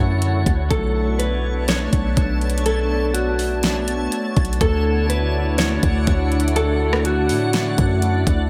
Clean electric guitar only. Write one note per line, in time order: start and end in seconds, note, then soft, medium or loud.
0.00 0.18 F#4 medium
0.70 1.16 A4 loud
1.19 1.65 B4 medium
1.69 2.62 C#5 medium
2.66 3.12 A4 loud
3.14 4.56 F#4 medium
4.61 5.07 A4 loud
5.09 5.55 B4 medium
5.58 6.52 C#5 medium
6.56 7.02 A4 loud
7.05 7.99 F#4 medium